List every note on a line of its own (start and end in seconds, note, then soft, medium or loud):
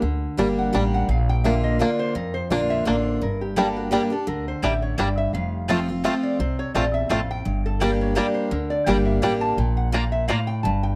0.00 0.26 D2 medium
0.00 0.70 D3 medium
0.00 0.39 A#4 medium
0.37 0.69 G1 medium
0.37 0.71 G3 medium
0.37 0.47 G3 medium
0.37 0.72 A#3 loud
0.37 0.72 D4 loud
0.37 0.41 D4 medium
0.37 0.72 G4 medium
0.59 0.74 F#5 loud
0.73 1.04 A1 medium
0.73 1.07 G3 medium
0.73 0.83 G3 medium
0.73 1.07 A#3 medium
0.73 1.07 D4 medium
0.73 0.77 D4 medium
0.73 1.08 G4 loud
0.73 0.93 G5 loud
0.94 1.09 F#5 loud
1.09 1.80 A#1 loud
1.09 1.77 A#2 medium
1.09 1.29 F5 medium
1.29 1.45 G5 loud
1.44 1.78 D3 medium
1.44 1.78 A#3 loud
1.44 1.54 A#3 medium
1.44 1.79 D4 medium
1.44 1.48 D4 medium
1.44 1.79 F4 loud
1.44 1.63 E5 loud
1.64 1.79 D#5 loud
1.79 2.13 D3 medium
1.79 2.14 A#3 loud
1.79 1.89 A#3 medium
1.79 2.14 D4 loud
1.79 1.84 D4 medium
1.79 2.14 F4 loud
1.79 1.99 D5 medium
1.99 2.15 C5 loud
2.15 2.83 F2 medium
2.15 2.39 F2 medium
2.15 2.34 A#4 medium
2.34 2.50 C5 loud
2.50 2.81 A#1 medium
2.50 2.84 D3 medium
2.50 2.84 A#3 medium
2.50 2.60 A#3 medium
2.50 2.85 D4 loud
2.50 2.54 D4 medium
2.50 2.85 F4 loud
2.50 2.69 D5 medium
2.70 2.86 E5 loud
2.85 3.17 A1 medium
2.85 3.19 D3 loud
2.85 3.20 A#3 medium
2.85 2.95 A#3 medium
2.85 3.20 D4 medium
2.85 2.90 D4 medium
2.85 3.20 F4 loud
2.85 3.06 D5 medium
3.06 3.21 C5 loud
3.21 3.94 G1 medium
3.21 3.89 G2 medium
3.21 3.41 A#4 medium
3.41 3.57 G4 medium
3.56 3.90 G3 medium
3.56 3.66 G3 medium
3.56 3.66 A#3 loud
3.56 3.90 A#3 medium
3.56 3.91 D4 medium
3.56 3.61 D4 medium
3.56 3.67 G4 loud
3.56 3.91 G4 loud
3.56 3.76 A4 loud
3.56 3.67 D5 loud
3.56 3.67 G5 loud
3.76 3.91 F#4 medium
3.91 4.10 G3 medium
3.91 4.01 G3 medium
3.91 4.10 A#3 loud
3.91 4.02 A#3 medium
3.91 4.10 D4 loud
3.91 3.95 D4 medium
3.91 4.11 G4 medium
3.91 4.09 G4 loud
3.91 4.02 G4 medium
3.91 4.02 D5 loud
3.91 4.02 G5 loud
4.10 4.27 D4 medium
4.10 4.26 G4 medium
4.10 4.27 A4 loud
4.27 4.52 D2 medium
4.27 4.95 D3 medium
4.27 4.47 A#4 medium
4.48 4.63 C5 medium
4.62 4.93 A1 medium
4.62 4.97 A2 medium
4.62 4.72 G3 medium
4.62 4.73 A#3 loud
4.62 4.66 D4 medium
4.62 4.73 G4 loud
4.62 4.73 D5 loud
4.62 4.82 E5 loud
4.62 4.73 G5 loud
4.82 4.98 C#5 loud
4.98 5.28 G1 medium
4.98 5.32 G2 medium
4.98 5.07 G3 medium
4.98 5.08 A#3 loud
4.98 5.02 D4 medium
4.98 5.08 G4 loud
4.98 5.17 D5 medium
4.98 5.08 D5 medium
4.98 5.08 G5 loud
5.18 5.33 E5 loud
5.33 6.05 F1 medium
5.33 6.02 F2 medium
5.33 5.84 F5 medium
5.68 5.87 F3 loud
5.68 5.88 A3 medium
5.68 5.78 A3 medium
5.68 5.78 C4 medium
5.68 5.88 C4 loud
5.68 5.78 C4 medium
5.68 5.79 F4 loud
5.68 5.87 F4 loud
5.68 5.78 F4 medium
5.68 5.79 C5 loud
5.68 5.79 A5 loud
5.88 6.04 C4 medium
5.88 6.04 F4 medium
6.04 6.38 F3 loud
6.04 6.13 A3 medium
6.04 6.39 A3 medium
6.04 6.14 C4 medium
6.04 6.13 C4 medium
6.04 6.39 C4 medium
6.04 6.14 F4 loud
6.04 6.13 F4 medium
6.04 6.39 F4 loud
6.04 6.14 C5 loud
6.04 6.14 A5 medium
6.23 6.39 D5 loud
6.39 6.63 C2 medium
6.39 7.07 C3 medium
6.39 6.59 C5 medium
6.59 6.74 C#5 loud
6.74 7.05 A#1 medium
6.74 7.09 E2 medium
6.74 6.84 A3 medium
6.74 6.85 C4 medium
6.74 6.84 C4 medium
6.74 6.85 F4 loud
6.74 6.84 F4 medium
6.74 6.85 C5 loud
6.74 6.94 D5 medium
6.74 6.85 A5 loud
6.94 7.10 E5 loud
7.09 7.40 A1 medium
7.09 7.44 F2 loud
7.09 7.19 A3 medium
7.09 7.20 C4 medium
7.09 7.19 C4 medium
7.09 7.20 F4 medium
7.09 7.20 C5 loud
7.09 7.30 F5 medium
7.09 7.20 A5 loud
7.31 7.63 G5 loud
7.45 8.18 G1 medium
7.45 8.13 G2 medium
7.66 7.82 A4 loud
7.80 8.14 G3 medium
7.80 7.90 G3 medium
7.80 7.91 A#3 medium
7.80 8.14 A#3 loud
7.80 8.15 D4 medium
7.80 7.84 D4 medium
7.80 7.91 G4 loud
7.80 8.16 G4 loud
7.80 8.00 A#4 medium
7.80 7.91 D5 loud
7.80 7.91 G5 loud
8.01 8.16 C#5 medium
8.15 8.50 G3 medium
8.15 8.26 G3 medium
8.15 8.50 A#3 loud
8.15 8.26 A#3 medium
8.15 8.50 D4 loud
8.15 8.20 D4 medium
8.15 8.26 G4 loud
8.15 8.50 G4 medium
8.15 8.34 D5 loud
8.15 8.26 D5 loud
8.15 8.27 G5 loud
8.34 8.51 C5 loud
8.51 8.76 D2 medium
8.51 9.19 D3 medium
8.51 8.70 A#4 medium
8.70 8.86 D5 loud
8.86 9.17 G1 loud
8.86 9.21 G3 loud
8.86 8.96 G3 medium
8.86 8.97 A#3 medium
8.86 9.21 A#3 medium
8.86 9.21 D4 medium
8.86 8.91 D4 medium
8.86 8.97 G4 loud
8.86 9.22 G4 medium
8.86 8.97 D5 loud
8.86 9.06 G5 loud
8.86 8.97 G5 loud
9.05 9.22 E5 medium
9.22 9.53 A1 medium
9.22 9.56 G3 medium
9.22 9.32 G3 medium
9.22 9.32 A#3 loud
9.22 9.57 A#3 medium
9.22 9.57 D4 medium
9.22 9.26 D4 medium
9.22 9.32 G4 loud
9.22 9.57 G4 loud
9.22 9.33 D5 loud
9.22 9.41 F5 medium
9.22 9.33 G5 loud
9.41 9.57 A5 loud
9.57 10.29 A#1 medium
9.57 9.91 A#2 medium
9.57 9.76 G5 medium
9.77 9.93 F#5 loud
9.92 10.27 A#2 loud
9.92 10.03 A#3 loud
9.92 10.02 A#3 medium
9.92 9.97 D4 medium
9.92 10.03 F4 loud
9.92 10.04 D5 loud
9.92 10.12 F5 loud
9.92 10.04 A#5 loud
10.12 10.27 E5 loud
10.28 10.62 A2 medium
10.28 10.38 A#3 loud
10.28 10.38 A#3 medium
10.28 10.32 D4 medium
10.28 10.39 F4 medium
10.28 10.39 D5 loud
10.28 10.47 F5 loud
10.28 10.39 A#5 loud
10.47 10.63 G5 loud
10.63 10.96 G1 medium
10.63 10.96 G2 medium
10.63 10.82 A5 loud
10.83 10.96 G5 loud